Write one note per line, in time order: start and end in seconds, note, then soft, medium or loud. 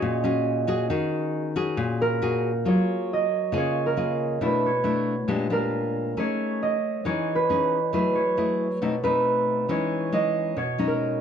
0.00 0.88 A#2 medium
0.00 0.20 C#4 medium
0.00 0.21 F#4 medium
0.00 0.21 G#4 medium
0.00 1.74 C#5 medium
0.00 1.40 D#5 medium
0.24 0.64 C#4 medium
0.24 0.65 F#4 medium
0.24 0.65 G#4 medium
0.67 0.86 C#4 medium
0.67 0.87 F#4 medium
0.67 0.87 G#4 medium
0.90 1.76 D#3 medium
0.90 1.52 C#4 medium
0.90 1.53 F#4 soft
0.90 1.53 G#4 medium
1.56 2.18 C#4 medium
1.56 2.18 F#4 medium
1.56 2.19 G#4 medium
1.77 2.63 A#2 medium
2.02 3.86 A#4 loud
2.22 2.50 C#4 medium
2.22 2.50 F#4 medium
2.22 2.50 G#4 medium
2.65 3.51 F#3 medium
2.65 3.25 A#3 soft
2.65 3.25 F4 soft
2.65 3.25 G#4 soft
2.65 3.57 C#5 medium
3.13 4.92 D#5 medium
3.52 4.39 C#3 medium
3.52 3.94 A#3 medium
3.52 3.94 F4 soft
3.52 3.94 G#4 medium
3.58 4.66 C#5 medium
3.86 4.51 A#4 medium
3.97 4.38 A#3 soft
3.97 4.38 F4 soft
3.97 4.38 G#4 soft
4.41 5.27 B2 soft
4.41 4.69 A3 soft
4.41 4.70 D4 soft
4.41 4.70 E4 medium
4.45 5.58 B4 medium
4.66 6.19 C#5 medium
4.84 5.14 A3 medium
4.84 5.14 D4 medium
4.84 5.15 E4 soft
5.28 6.14 A#2 medium
5.28 5.47 G#3 medium
5.28 5.47 D4 medium
5.28 5.48 G4 medium
5.50 6.13 G#3 soft
5.50 6.13 D4 medium
5.50 6.13 G4 medium
5.50 7.41 A#4 medium
6.17 7.03 A3 medium
6.17 6.76 C#4 soft
6.17 6.76 D#4 soft
6.17 6.76 G#4 soft
6.17 7.06 C#5 medium
6.63 8.41 D#5 medium
7.05 7.91 E3 medium
7.05 7.33 C#4 medium
7.05 7.34 D#4 soft
7.05 7.34 G#4 medium
7.05 8.15 C#5 medium
7.35 7.94 B4 medium
7.50 7.78 C#4 soft
7.50 7.78 D#4 soft
7.50 7.78 G#4 soft
7.93 8.79 F#3 medium
7.93 8.21 A3 soft
7.93 8.21 E4 soft
7.93 8.22 G#4 medium
7.93 9.03 B4 medium
8.15 9.70 C#5 medium
8.37 8.67 A3 soft
8.37 8.67 E4 soft
8.37 8.67 G#4 soft
8.82 9.67 B2 medium
8.82 8.94 A3 soft
8.82 8.94 C4 medium
8.82 8.95 D#4 soft
9.04 9.66 A3 soft
9.04 9.66 C4 soft
9.04 9.66 D#4 medium
9.04 10.94 B4 medium
9.69 10.55 E3 medium
9.69 10.09 G#3 soft
9.69 10.10 C#4 soft
9.69 10.10 D#4 soft
9.69 10.57 C#5 medium
10.12 10.56 G#3 soft
10.12 10.56 C#4 soft
10.12 10.57 D#4 medium
10.12 11.21 D#5 medium
10.57 11.21 B2 medium
10.57 11.21 C#5 medium
10.78 11.21 G#3 medium
10.78 11.21 C#4 soft
10.78 11.21 D#4 medium
10.88 11.21 A#4 medium